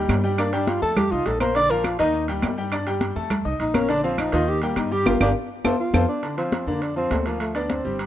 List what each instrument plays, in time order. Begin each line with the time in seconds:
Already playing: grand piano G3 G4 G5
0.09 upright bass G2, high conga, high timbale, low timbale, claves, maracas
0.23 grand piano G3 G4 G5, high conga, maracas
0.38 tenor saxophone A#3, grand piano D4 D5 D6, high conga, high timbale, claves, maracas
0.53 grand piano G3 G4 G5, tenor saxophone D4, high conga, high timbale, maracas
0.67 tenor saxophone F4, high conga, high timbale, maracas
0.82 upright bass F2, grand piano A3 A4 A5, tenor saxophone A4, high conga, maracas
0.97 tenor saxophone G4, high conga, low conga, high timbale, claves, maracas
1.11 upright bass C2, grand piano D#4 D#5 D#6, tenor saxophone F4, high conga, maracas
1.26 upright bass A#1, tenor saxophone A4, high conga, high timbale, low timbale, maracas
1.40 grand piano A#3 A#4 A#5, tenor saxophone C5, high conga, high timbale, claves, maracas
1.55 grand piano D3 D4 D5, tenor saxophone D5, high conga, high timbale, maracas
1.70 grand piano F3 F4 F5, tenor saxophone A#4, high conga, maracas
1.84 tenor saxophone F4, high conga, high timbale, claves, maracas
1.99 upright bass D#2, grand piano D#3 D#4 D#5, tenor saxophone D#4, high conga, high timbale, maracas
2.13 high conga, maracas
2.28 grand piano G3 G4 G5, high conga, high timbale, maracas
2.42 upright bass G2, high conga, high timbale, low timbale, claves, maracas
2.57 grand piano G3 G4 G5, high conga, maracas
2.72 grand piano D4 D5 D6, high conga, high timbale, claves, maracas
2.87 grand piano G3 G4 G5, high conga, high timbale, maracas
3.01 high conga, high timbale, maracas
3.16 upright bass F2, grand piano A3 A4 A5, high conga, maracas
3.30 high conga, low conga, high timbale, claves, maracas
3.45 upright bass C2, grand piano D#4 D#5 D#6, high conga, maracas
3.59 upright bass A#1, tenor saxophone D#4, high conga, high timbale, maracas
3.74 grand piano A#3 A#4 A#5, tenor saxophone C#4, high conga, high timbale, claves, maracas
3.89 grand piano D3 D4 D5, tenor saxophone D4, high conga, high timbale, maracas
4.03 grand piano F3 F4 F5, tenor saxophone C4, high conga, maracas
4.18 tenor saxophone D#4, high conga, high timbale, claves, maracas
4.32 upright bass D#2, grand piano D#3 D#4 D#5, tenor saxophone F4, high conga, high timbale, maracas
4.48 tenor saxophone G4, high conga, maracas
4.62 grand piano G3 G4 G5, tenor saxophone A#3, high conga, high timbale, maracas
4.76 upright bass G2, tenor saxophone D#4, high conga, high timbale, claves, maracas
4.91 grand piano G3 G4 G5, tenor saxophone G4, high conga, maracas
5.06 upright bass G1, grand piano F4 G4 A#4, tenor saxophone F4, high conga, high timbale, claves, maracas
5.21 upright bass G1, tenor saxophone D4, grand piano F4 G4 A#4, high conga, high timbale, claves, maracas
5.64 upright bass F2, grand piano F4 A4 C5, high conga, high timbale, claves, maracas
5.80 tenor saxophone F4
5.94 upright bass F2, grand piano F4 A4 C5, high conga, high timbale, claves, maracas
6.08 tenor saxophone D4
6.23 grand piano D3 D4, high conga, high timbale, maracas
6.37 grand piano F3 F4, tenor saxophone C4, high conga, high timbale
6.52 high conga, high timbale, low timbale, maracas
6.67 upright bass F2, grand piano D3 D4, tenor saxophone A#3, maracas
6.82 tenor saxophone D4, high conga, high timbale, maracas
6.96 grand piano F3 F4, tenor saxophone C4, high conga, maracas
7.11 upright bass D2, grand piano A3 A4, high conga, high timbale, low timbale, maracas
7.26 grand piano F3 F4, tenor saxophone A#3, high timbale, maracas
7.40 tenor saxophone A3, high conga, high timbale, maracas
7.55 tenor saxophone B3, grand piano D4 D5, high conga, high timbale
7.70 tenor saxophone C4, high conga, high timbale, low timbale, maracas
7.85 upright bass G1, grand piano G3 G4, high conga, maracas
7.99 high conga, high timbale, maracas